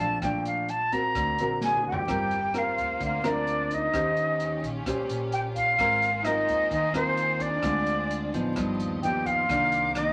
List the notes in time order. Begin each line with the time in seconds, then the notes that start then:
Already playing: F2
0.00 A#1 F3 A3 D4 A5
0.22 A#1 A#2 F3 A3 D4 G5, kick, cross-stick, closed hi-hat
0.45 F5, closed hi-hat
0.69 A5, closed hi-hat
0.92 C4 F#4 A#4 A#5, kick, closed hi-hat
1.15 D2 D3, kick, cross-stick, closed hi-hat
1.38 A#1 C4 F#4 A#4, closed hi-hat
1.61 G#4 G#5, snare
1.77 mid tom
1.84 D2 G4 G5
1.92 floor tom
2.07 G1 G3 A#3 C4 F4 A#4 C5, kick, cross-stick, closed hi-hat
2.31 closed hi-hat
2.54 C4 F4 A#4, cross-stick, closed hi-hat
2.58 F5
2.78 D2, kick, closed hi-hat
3.00 D2 D3 F4, kick, closed hi-hat
3.05 F5
3.23 D2 C4 D4 F4 A#4, cross-stick, closed hi-hat
3.28 D5
3.47 closed hi-hat
3.70 D#4, kick, closed hi-hat
3.74 D#5
3.93 D#2 D#3 C#4 G4 C5, kick, cross-stick, closed hi-hat
4.17 closed hi-hat
4.40 closed hi-hat
4.62 A#1, kick, closed hi-hat
4.85 A#1 A#2 C#4 G4 C5, kick, cross-stick, closed hi-hat
5.07 A#1, closed hi-hat
5.32 G4 G5, closed hi-hat
5.54 F4 F5, kick, closed hi-hat
5.76 G#1 G#3 A#3 C4 F4 G#4 A#4 C5, kick, cross-stick, closed hi-hat
6.02 closed hi-hat
6.23 C4 D#4 F4 A#4 D#5, cross-stick, closed hi-hat
6.48 D#2, kick, closed hi-hat
6.70 D#2 D#3 D#4 D#5, kick, closed hi-hat
6.91 D#2 C4 F4, cross-stick, closed hi-hat
6.95 A#4 C5
7.17 closed hi-hat
7.38 D4 D5, kick, closed hi-hat
7.62 D2 D3 G#3 C4 F4 D5, kick, cross-stick, closed hi-hat
7.86 closed hi-hat
8.11 closed hi-hat
8.33 A1 F3 B3 D#4, kick, closed hi-hat
8.54 G1 G2 B3 G4 D#5, kick, cross-stick, closed hi-hat
8.78 D#2, closed hi-hat
9.02 F3 B3 D#4 G4 G5, closed hi-hat
9.25 F4 F5, kick, closed hi-hat
9.47 C2 C3 D#3 A#3 C4 D4 A#4 D6, kick, cross-stick, closed hi-hat
9.72 closed hi-hat
9.94 D#3 A#3 D#4 D#5, cross-stick, closed hi-hat